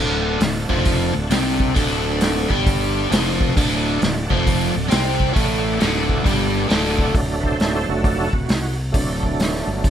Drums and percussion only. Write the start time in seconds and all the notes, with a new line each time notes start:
0.41 snare, open hi-hat
0.70 kick
0.85 kick, open hi-hat
1.31 snare, open hi-hat
1.60 kick
1.76 kick, open hi-hat
2.21 snare, open hi-hat
2.50 kick
2.67 kick, open hi-hat
3.12 snare, open hi-hat
3.28 snare
3.41 kick
3.57 kick, open hi-hat
4.02 snare, open hi-hat
4.30 kick
4.47 kick, open hi-hat
4.91 snare, open hi-hat
5.20 kick
5.36 kick, open hi-hat
5.81 snare, open hi-hat
6.09 kick
6.26 kick, open hi-hat
6.70 snare, open hi-hat
6.86 snare
6.99 kick
7.15 kick, open hi-hat
7.44 kick
7.60 snare, open hi-hat
8.04 kick, open hi-hat
8.33 kick
8.49 snare, open hi-hat
8.94 kick, open hi-hat
9.23 kick
9.40 snare, open hi-hat
9.56 snare
9.84 kick, open hi-hat